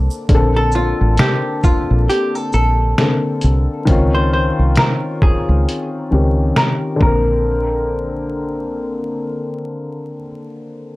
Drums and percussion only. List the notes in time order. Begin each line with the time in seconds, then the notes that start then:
0.10 shaker
0.29 kick, closed hi-hat
0.72 shaker
1.17 snare, closed hi-hat
1.63 kick, shaker
2.10 closed hi-hat
2.53 shaker
2.98 snare, closed hi-hat
3.41 closed hi-hat, shaker
3.87 kick, closed hi-hat
4.76 snare, closed hi-hat
5.22 kick
5.69 closed hi-hat
6.56 snare, closed hi-hat
7.01 kick